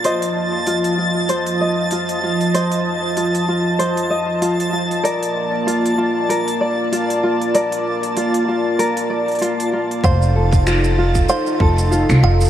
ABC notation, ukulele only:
X:1
M:4/4
L:1/8
Q:"Swing 16ths" 1/4=96
K:Fmix
V:1 name="Ukulele"
[ce]2 F F c e F F | [ce]2 F F c e F F | [Bd]2 F F B d F F | [Bd]2 F F B d F F |
c A F F c A F F |]